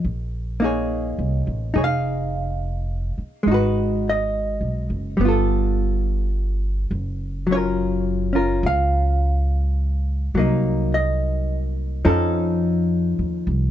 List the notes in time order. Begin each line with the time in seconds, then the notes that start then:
0.04 A#1
0.60 A#3 D#4
0.64 G#4 C#5
1.19 C2
1.47 A1
1.74 F1 D#4 G#4 C#5
1.84 F5
3.18 muted upright bass stroke
3.43 G#1 G#3
3.48 D#4 F#4
3.54 B4
4.09 D#5
4.61 B1
4.90 F#1
5.17 G1 G3 B3
5.25 F4 A4
6.91 F#1
7.47 F#3
7.51 C#4 F4 C#5
7.57 A#4
8.33 C#4 F4 A#4
8.63 C#2 F5
10.34 C2 F#3 A#3
10.39 D#4
10.94 D#5
12.05 F2 F3 C#4 D#4 A4
13.19 D#2
13.47 C2